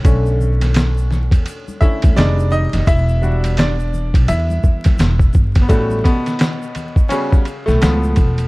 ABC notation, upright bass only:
X:1
M:4/4
L:1/16
Q:"Swing 16ths" 1/4=85
K:Edor
V:1 name="Upright bass" clef=bass
B,,,6- B,,, E,, z3 D,, =F,,,3 F,,, | E,,,6- E,,, B,,, E,,2 E,,2 E,,,2 G,,,2 | A,,,2 z8 z B,,, C,,2 E,,,2 |]